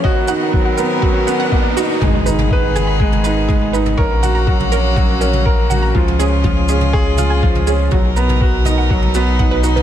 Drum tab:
SH |--x---x---x---x-|--x---x---x---x-|--x---x---x---x-|--x---x---x---x-|
T2 |----------------|o--o--o--o--o--o|--o--o--o--o--o-|-o--o--o--o--o--|
BD |o---o---o---o---|o---o---o---o---|o---o---o---o---|o---o---o---o---|

SH |--x---x---x---x-|
T2 |o--o--o--o--o--o|
BD |o---o---o---o---|